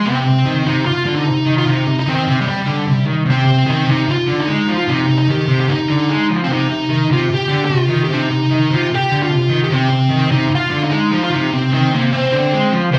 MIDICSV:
0, 0, Header, 1, 4, 480
1, 0, Start_track
1, 0, Key_signature, -3, "minor"
1, 0, Tempo, 402145
1, 78, Time_signature, 4, 2, 24, 8
1, 15502, End_track
2, 0, Start_track
2, 0, Title_t, "Lead electric guitar"
2, 0, Program_c, 0, 29
2, 58, Note_on_c, 0, 60, 81
2, 792, Note_on_c, 0, 63, 76
2, 807, Note_off_c, 0, 60, 0
2, 1016, Note_off_c, 0, 63, 0
2, 1022, Note_on_c, 0, 65, 85
2, 1362, Note_off_c, 0, 65, 0
2, 1384, Note_on_c, 0, 63, 83
2, 1835, Note_off_c, 0, 63, 0
2, 1887, Note_on_c, 0, 65, 72
2, 2020, Note_off_c, 0, 65, 0
2, 2020, Note_on_c, 0, 63, 89
2, 2372, Note_off_c, 0, 63, 0
2, 2387, Note_on_c, 0, 63, 74
2, 2483, Note_off_c, 0, 63, 0
2, 2492, Note_on_c, 0, 60, 77
2, 2854, Note_off_c, 0, 60, 0
2, 2871, Note_on_c, 0, 55, 70
2, 2960, Note_off_c, 0, 55, 0
2, 2974, Note_on_c, 0, 55, 81
2, 3637, Note_off_c, 0, 55, 0
2, 3943, Note_on_c, 0, 60, 90
2, 4417, Note_off_c, 0, 60, 0
2, 4432, Note_on_c, 0, 60, 83
2, 4661, Note_off_c, 0, 60, 0
2, 4666, Note_on_c, 0, 63, 90
2, 4889, Note_on_c, 0, 65, 92
2, 4899, Note_off_c, 0, 63, 0
2, 5237, Note_on_c, 0, 63, 77
2, 5254, Note_off_c, 0, 65, 0
2, 5685, Note_off_c, 0, 63, 0
2, 5699, Note_on_c, 0, 65, 82
2, 5833, Note_off_c, 0, 65, 0
2, 5844, Note_on_c, 0, 63, 102
2, 6174, Note_off_c, 0, 63, 0
2, 6189, Note_on_c, 0, 63, 85
2, 6318, Note_off_c, 0, 63, 0
2, 6333, Note_on_c, 0, 67, 93
2, 6662, Note_off_c, 0, 67, 0
2, 6689, Note_on_c, 0, 67, 94
2, 6791, Note_on_c, 0, 63, 90
2, 6808, Note_off_c, 0, 67, 0
2, 7468, Note_off_c, 0, 63, 0
2, 7689, Note_on_c, 0, 60, 56
2, 7767, Note_off_c, 0, 60, 0
2, 7788, Note_on_c, 0, 63, 96
2, 8446, Note_off_c, 0, 63, 0
2, 8510, Note_on_c, 0, 65, 84
2, 8759, Note_off_c, 0, 65, 0
2, 8759, Note_on_c, 0, 67, 91
2, 9110, Note_off_c, 0, 67, 0
2, 9135, Note_on_c, 0, 65, 89
2, 9592, Note_off_c, 0, 65, 0
2, 9597, Note_on_c, 0, 67, 89
2, 9691, Note_off_c, 0, 67, 0
2, 9711, Note_on_c, 0, 63, 96
2, 10436, Note_off_c, 0, 63, 0
2, 10438, Note_on_c, 0, 65, 86
2, 10674, Note_off_c, 0, 65, 0
2, 10674, Note_on_c, 0, 67, 98
2, 11008, Note_off_c, 0, 67, 0
2, 11013, Note_on_c, 0, 65, 90
2, 11452, Note_off_c, 0, 65, 0
2, 11507, Note_on_c, 0, 67, 82
2, 11616, Note_off_c, 0, 67, 0
2, 11616, Note_on_c, 0, 60, 91
2, 12309, Note_off_c, 0, 60, 0
2, 12314, Note_on_c, 0, 63, 90
2, 12539, Note_off_c, 0, 63, 0
2, 12593, Note_on_c, 0, 65, 86
2, 12927, Note_off_c, 0, 65, 0
2, 12932, Note_on_c, 0, 63, 89
2, 13409, Note_off_c, 0, 63, 0
2, 13414, Note_on_c, 0, 65, 79
2, 13542, Note_off_c, 0, 65, 0
2, 13542, Note_on_c, 0, 63, 92
2, 13768, Note_off_c, 0, 63, 0
2, 13768, Note_on_c, 0, 60, 82
2, 13997, Note_off_c, 0, 60, 0
2, 14011, Note_on_c, 0, 60, 68
2, 14228, Note_off_c, 0, 60, 0
2, 14256, Note_on_c, 0, 58, 81
2, 14476, Note_off_c, 0, 58, 0
2, 14476, Note_on_c, 0, 60, 70
2, 15196, Note_off_c, 0, 60, 0
2, 15447, Note_on_c, 0, 72, 96
2, 15502, Note_off_c, 0, 72, 0
2, 15502, End_track
3, 0, Start_track
3, 0, Title_t, "Overdriven electric guitar"
3, 0, Program_c, 1, 29
3, 61, Note_on_c, 1, 48, 96
3, 296, Note_off_c, 1, 48, 0
3, 310, Note_on_c, 1, 48, 57
3, 505, Note_off_c, 1, 48, 0
3, 546, Note_on_c, 1, 51, 84
3, 780, Note_off_c, 1, 51, 0
3, 785, Note_on_c, 1, 48, 96
3, 1018, Note_off_c, 1, 48, 0
3, 1259, Note_on_c, 1, 50, 94
3, 1496, Note_off_c, 1, 50, 0
3, 1501, Note_on_c, 1, 48, 60
3, 1699, Note_off_c, 1, 48, 0
3, 1743, Note_on_c, 1, 51, 96
3, 1975, Note_off_c, 1, 51, 0
3, 1980, Note_on_c, 1, 48, 93
3, 2220, Note_off_c, 1, 48, 0
3, 2233, Note_on_c, 1, 48, 59
3, 2425, Note_off_c, 1, 48, 0
3, 2472, Note_on_c, 1, 51, 90
3, 2706, Note_off_c, 1, 51, 0
3, 2716, Note_on_c, 1, 48, 99
3, 2945, Note_off_c, 1, 48, 0
3, 3178, Note_on_c, 1, 50, 98
3, 3419, Note_off_c, 1, 50, 0
3, 3424, Note_on_c, 1, 48, 62
3, 3622, Note_off_c, 1, 48, 0
3, 3643, Note_on_c, 1, 51, 101
3, 3880, Note_off_c, 1, 51, 0
3, 3885, Note_on_c, 1, 48, 91
3, 4117, Note_off_c, 1, 48, 0
3, 4132, Note_on_c, 1, 48, 59
3, 4336, Note_off_c, 1, 48, 0
3, 4374, Note_on_c, 1, 51, 88
3, 4608, Note_off_c, 1, 51, 0
3, 4613, Note_on_c, 1, 48, 100
3, 4852, Note_off_c, 1, 48, 0
3, 5102, Note_on_c, 1, 50, 99
3, 5343, Note_off_c, 1, 50, 0
3, 5347, Note_on_c, 1, 56, 80
3, 5586, Note_off_c, 1, 56, 0
3, 5590, Note_on_c, 1, 53, 95
3, 5825, Note_off_c, 1, 53, 0
3, 5830, Note_on_c, 1, 48, 99
3, 6050, Note_off_c, 1, 48, 0
3, 6065, Note_on_c, 1, 48, 58
3, 6264, Note_off_c, 1, 48, 0
3, 6307, Note_on_c, 1, 51, 87
3, 6531, Note_off_c, 1, 51, 0
3, 6536, Note_on_c, 1, 48, 94
3, 6781, Note_off_c, 1, 48, 0
3, 7039, Note_on_c, 1, 50, 99
3, 7272, Note_off_c, 1, 50, 0
3, 7275, Note_on_c, 1, 56, 79
3, 7511, Note_off_c, 1, 56, 0
3, 7519, Note_on_c, 1, 53, 87
3, 7745, Note_off_c, 1, 53, 0
3, 7749, Note_on_c, 1, 48, 100
3, 7981, Note_off_c, 1, 48, 0
3, 7996, Note_on_c, 1, 48, 56
3, 8190, Note_off_c, 1, 48, 0
3, 8236, Note_on_c, 1, 51, 97
3, 8470, Note_off_c, 1, 51, 0
3, 8474, Note_on_c, 1, 48, 85
3, 8701, Note_off_c, 1, 48, 0
3, 8939, Note_on_c, 1, 50, 100
3, 9182, Note_off_c, 1, 50, 0
3, 9188, Note_on_c, 1, 48, 67
3, 9386, Note_off_c, 1, 48, 0
3, 9412, Note_on_c, 1, 51, 100
3, 9648, Note_off_c, 1, 51, 0
3, 9653, Note_on_c, 1, 48, 101
3, 9899, Note_off_c, 1, 48, 0
3, 9911, Note_on_c, 1, 48, 62
3, 10107, Note_off_c, 1, 48, 0
3, 10148, Note_on_c, 1, 51, 100
3, 10386, Note_off_c, 1, 51, 0
3, 10392, Note_on_c, 1, 48, 92
3, 10626, Note_off_c, 1, 48, 0
3, 10880, Note_on_c, 1, 50, 100
3, 11109, Note_off_c, 1, 50, 0
3, 11113, Note_on_c, 1, 48, 60
3, 11308, Note_off_c, 1, 48, 0
3, 11337, Note_on_c, 1, 51, 98
3, 11576, Note_off_c, 1, 51, 0
3, 11581, Note_on_c, 1, 48, 99
3, 11800, Note_off_c, 1, 48, 0
3, 11815, Note_on_c, 1, 48, 62
3, 12018, Note_off_c, 1, 48, 0
3, 12055, Note_on_c, 1, 51, 98
3, 12297, Note_off_c, 1, 51, 0
3, 12301, Note_on_c, 1, 48, 97
3, 12520, Note_off_c, 1, 48, 0
3, 12772, Note_on_c, 1, 50, 93
3, 13010, Note_on_c, 1, 56, 89
3, 13017, Note_off_c, 1, 50, 0
3, 13257, Note_off_c, 1, 56, 0
3, 13261, Note_on_c, 1, 53, 105
3, 13492, Note_off_c, 1, 53, 0
3, 13496, Note_on_c, 1, 48, 106
3, 13740, Note_off_c, 1, 48, 0
3, 13755, Note_on_c, 1, 48, 58
3, 13948, Note_off_c, 1, 48, 0
3, 13992, Note_on_c, 1, 51, 101
3, 14227, Note_off_c, 1, 51, 0
3, 14232, Note_on_c, 1, 48, 92
3, 14457, Note_off_c, 1, 48, 0
3, 14708, Note_on_c, 1, 50, 93
3, 14945, Note_off_c, 1, 50, 0
3, 14952, Note_on_c, 1, 56, 90
3, 15185, Note_on_c, 1, 53, 106
3, 15187, Note_off_c, 1, 56, 0
3, 15416, Note_off_c, 1, 53, 0
3, 15421, Note_on_c, 1, 48, 104
3, 15502, Note_off_c, 1, 48, 0
3, 15502, End_track
4, 0, Start_track
4, 0, Title_t, "Muted overdriven electric guitar strokes"
4, 1032, Note_on_c, 9, 29, 52
4, 1151, Note_off_c, 9, 29, 0
4, 2959, Note_on_c, 9, 29, 55
4, 3078, Note_off_c, 9, 29, 0
4, 4866, Note_on_c, 9, 29, 52
4, 4985, Note_off_c, 9, 29, 0
4, 6797, Note_on_c, 9, 29, 46
4, 6916, Note_off_c, 9, 29, 0
4, 8716, Note_on_c, 9, 29, 54
4, 8835, Note_off_c, 9, 29, 0
4, 10640, Note_on_c, 9, 29, 55
4, 10759, Note_off_c, 9, 29, 0
4, 12535, Note_on_c, 9, 29, 50
4, 12654, Note_off_c, 9, 29, 0
4, 14472, Note_on_c, 9, 29, 55
4, 14591, Note_off_c, 9, 29, 0
4, 15502, End_track
0, 0, End_of_file